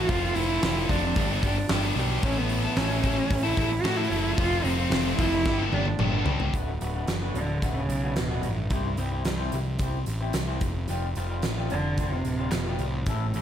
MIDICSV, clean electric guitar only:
0, 0, Header, 1, 3, 480
1, 0, Start_track
1, 0, Tempo, 536193
1, 82, Time_signature, 4, 2, 24, 8
1, 5363, Tempo, 544465
1, 11910, End_track
2, 0, Start_track
2, 0, Title_t, "Clean electric guitar"
2, 0, Program_c, 0, 27
2, 5848, Note_on_c, 0, 50, 72
2, 5851, Note_on_c, 0, 57, 78
2, 5855, Note_on_c, 0, 59, 75
2, 5859, Note_on_c, 0, 66, 82
2, 5999, Note_off_c, 0, 50, 0
2, 6001, Note_off_c, 0, 57, 0
2, 6003, Note_off_c, 0, 59, 0
2, 6005, Note_off_c, 0, 66, 0
2, 6082, Note_on_c, 0, 50, 54
2, 6084, Note_on_c, 0, 57, 68
2, 6088, Note_on_c, 0, 59, 70
2, 6091, Note_on_c, 0, 66, 67
2, 6189, Note_off_c, 0, 66, 0
2, 6194, Note_off_c, 0, 59, 0
2, 6196, Note_off_c, 0, 57, 0
2, 6198, Note_off_c, 0, 50, 0
2, 6200, Note_on_c, 0, 66, 70
2, 6205, Note_on_c, 0, 59, 68
2, 6207, Note_on_c, 0, 57, 60
2, 6208, Note_on_c, 0, 50, 56
2, 6311, Note_off_c, 0, 57, 0
2, 6312, Note_off_c, 0, 50, 0
2, 6315, Note_off_c, 0, 59, 0
2, 6319, Note_off_c, 0, 66, 0
2, 6444, Note_on_c, 0, 66, 85
2, 6445, Note_on_c, 0, 59, 82
2, 6451, Note_on_c, 0, 57, 64
2, 6453, Note_on_c, 0, 50, 65
2, 6596, Note_off_c, 0, 66, 0
2, 6597, Note_off_c, 0, 59, 0
2, 6600, Note_off_c, 0, 57, 0
2, 6601, Note_off_c, 0, 50, 0
2, 6803, Note_on_c, 0, 50, 67
2, 6804, Note_on_c, 0, 57, 81
2, 6810, Note_on_c, 0, 59, 84
2, 6815, Note_on_c, 0, 66, 87
2, 6956, Note_off_c, 0, 50, 0
2, 6956, Note_off_c, 0, 57, 0
2, 6959, Note_off_c, 0, 59, 0
2, 6962, Note_off_c, 0, 66, 0
2, 7166, Note_on_c, 0, 66, 86
2, 7169, Note_on_c, 0, 59, 77
2, 7174, Note_on_c, 0, 57, 70
2, 7175, Note_on_c, 0, 50, 60
2, 7272, Note_off_c, 0, 50, 0
2, 7276, Note_off_c, 0, 57, 0
2, 7276, Note_off_c, 0, 59, 0
2, 7277, Note_off_c, 0, 66, 0
2, 7399, Note_on_c, 0, 66, 81
2, 7405, Note_on_c, 0, 59, 74
2, 7408, Note_on_c, 0, 57, 78
2, 7412, Note_on_c, 0, 50, 74
2, 7554, Note_off_c, 0, 66, 0
2, 7557, Note_off_c, 0, 59, 0
2, 7558, Note_off_c, 0, 57, 0
2, 7560, Note_off_c, 0, 50, 0
2, 7759, Note_on_c, 0, 60, 74
2, 7763, Note_on_c, 0, 64, 77
2, 7769, Note_on_c, 0, 67, 83
2, 7774, Note_on_c, 0, 72, 93
2, 7914, Note_off_c, 0, 60, 0
2, 7916, Note_off_c, 0, 64, 0
2, 7918, Note_off_c, 0, 67, 0
2, 7921, Note_off_c, 0, 72, 0
2, 8000, Note_on_c, 0, 60, 64
2, 8004, Note_on_c, 0, 64, 61
2, 8008, Note_on_c, 0, 67, 64
2, 8009, Note_on_c, 0, 72, 64
2, 8108, Note_off_c, 0, 72, 0
2, 8109, Note_off_c, 0, 67, 0
2, 8114, Note_off_c, 0, 64, 0
2, 8116, Note_off_c, 0, 60, 0
2, 8118, Note_on_c, 0, 72, 80
2, 8120, Note_on_c, 0, 67, 77
2, 8125, Note_on_c, 0, 64, 69
2, 8127, Note_on_c, 0, 60, 59
2, 8223, Note_off_c, 0, 60, 0
2, 8227, Note_off_c, 0, 64, 0
2, 8228, Note_off_c, 0, 67, 0
2, 8231, Note_off_c, 0, 72, 0
2, 8354, Note_on_c, 0, 72, 90
2, 8357, Note_on_c, 0, 67, 79
2, 8361, Note_on_c, 0, 64, 76
2, 8363, Note_on_c, 0, 60, 63
2, 8511, Note_off_c, 0, 72, 0
2, 8513, Note_off_c, 0, 67, 0
2, 8515, Note_off_c, 0, 64, 0
2, 8516, Note_off_c, 0, 60, 0
2, 8713, Note_on_c, 0, 60, 84
2, 8716, Note_on_c, 0, 64, 81
2, 8721, Note_on_c, 0, 67, 86
2, 8723, Note_on_c, 0, 72, 84
2, 8871, Note_off_c, 0, 60, 0
2, 8873, Note_off_c, 0, 64, 0
2, 8875, Note_off_c, 0, 67, 0
2, 8876, Note_off_c, 0, 72, 0
2, 9078, Note_on_c, 0, 72, 81
2, 9082, Note_on_c, 0, 67, 69
2, 9087, Note_on_c, 0, 64, 74
2, 9089, Note_on_c, 0, 60, 69
2, 9191, Note_off_c, 0, 60, 0
2, 9191, Note_off_c, 0, 64, 0
2, 9195, Note_off_c, 0, 67, 0
2, 9198, Note_off_c, 0, 72, 0
2, 9318, Note_on_c, 0, 72, 78
2, 9319, Note_on_c, 0, 67, 79
2, 9323, Note_on_c, 0, 64, 71
2, 9324, Note_on_c, 0, 60, 58
2, 9438, Note_off_c, 0, 72, 0
2, 9439, Note_off_c, 0, 67, 0
2, 9441, Note_off_c, 0, 60, 0
2, 9441, Note_off_c, 0, 64, 0
2, 9679, Note_on_c, 0, 53, 76
2, 9681, Note_on_c, 0, 55, 76
2, 9686, Note_on_c, 0, 60, 81
2, 9688, Note_on_c, 0, 65, 83
2, 9835, Note_off_c, 0, 53, 0
2, 9836, Note_off_c, 0, 55, 0
2, 9839, Note_off_c, 0, 60, 0
2, 9840, Note_off_c, 0, 65, 0
2, 9920, Note_on_c, 0, 53, 53
2, 9924, Note_on_c, 0, 55, 67
2, 9927, Note_on_c, 0, 60, 62
2, 9930, Note_on_c, 0, 65, 70
2, 10034, Note_off_c, 0, 65, 0
2, 10038, Note_off_c, 0, 55, 0
2, 10038, Note_off_c, 0, 60, 0
2, 10040, Note_off_c, 0, 53, 0
2, 10045, Note_on_c, 0, 65, 74
2, 10048, Note_on_c, 0, 60, 69
2, 10049, Note_on_c, 0, 55, 72
2, 10054, Note_on_c, 0, 53, 64
2, 10154, Note_off_c, 0, 53, 0
2, 10156, Note_off_c, 0, 55, 0
2, 10157, Note_off_c, 0, 60, 0
2, 10160, Note_off_c, 0, 65, 0
2, 10283, Note_on_c, 0, 65, 83
2, 10287, Note_on_c, 0, 55, 71
2, 10287, Note_on_c, 0, 60, 85
2, 10293, Note_on_c, 0, 53, 71
2, 10438, Note_off_c, 0, 65, 0
2, 10440, Note_off_c, 0, 55, 0
2, 10440, Note_off_c, 0, 60, 0
2, 10443, Note_off_c, 0, 53, 0
2, 10646, Note_on_c, 0, 53, 82
2, 10649, Note_on_c, 0, 55, 73
2, 10652, Note_on_c, 0, 60, 87
2, 10657, Note_on_c, 0, 65, 81
2, 10800, Note_off_c, 0, 53, 0
2, 10802, Note_off_c, 0, 55, 0
2, 10803, Note_off_c, 0, 60, 0
2, 10805, Note_off_c, 0, 65, 0
2, 11004, Note_on_c, 0, 65, 75
2, 11007, Note_on_c, 0, 60, 75
2, 11011, Note_on_c, 0, 55, 71
2, 11016, Note_on_c, 0, 53, 72
2, 11117, Note_off_c, 0, 53, 0
2, 11120, Note_off_c, 0, 60, 0
2, 11122, Note_off_c, 0, 55, 0
2, 11124, Note_off_c, 0, 65, 0
2, 11249, Note_on_c, 0, 65, 83
2, 11253, Note_on_c, 0, 60, 68
2, 11254, Note_on_c, 0, 55, 69
2, 11258, Note_on_c, 0, 53, 66
2, 11402, Note_off_c, 0, 65, 0
2, 11404, Note_off_c, 0, 60, 0
2, 11405, Note_off_c, 0, 55, 0
2, 11407, Note_off_c, 0, 53, 0
2, 11609, Note_on_c, 0, 57, 72
2, 11612, Note_on_c, 0, 61, 76
2, 11619, Note_on_c, 0, 64, 84
2, 11622, Note_on_c, 0, 69, 91
2, 11763, Note_off_c, 0, 57, 0
2, 11764, Note_off_c, 0, 61, 0
2, 11768, Note_off_c, 0, 64, 0
2, 11769, Note_off_c, 0, 69, 0
2, 11846, Note_on_c, 0, 57, 59
2, 11850, Note_on_c, 0, 61, 61
2, 11852, Note_on_c, 0, 64, 64
2, 11856, Note_on_c, 0, 69, 68
2, 11910, Note_off_c, 0, 57, 0
2, 11910, Note_off_c, 0, 61, 0
2, 11910, Note_off_c, 0, 64, 0
2, 11910, Note_off_c, 0, 69, 0
2, 11910, End_track
3, 0, Start_track
3, 0, Title_t, "Muted clean electric guitar strokes"
3, 6321, Note_on_c, 9, 29, 42
3, 6409, Note_off_c, 9, 29, 0
3, 7283, Note_on_c, 9, 29, 39
3, 7371, Note_off_c, 9, 29, 0
3, 8233, Note_on_c, 9, 29, 46
3, 8322, Note_off_c, 9, 29, 0
3, 9202, Note_on_c, 9, 29, 42
3, 9290, Note_off_c, 9, 29, 0
3, 10164, Note_on_c, 9, 29, 43
3, 10252, Note_off_c, 9, 29, 0
3, 11910, End_track
0, 0, End_of_file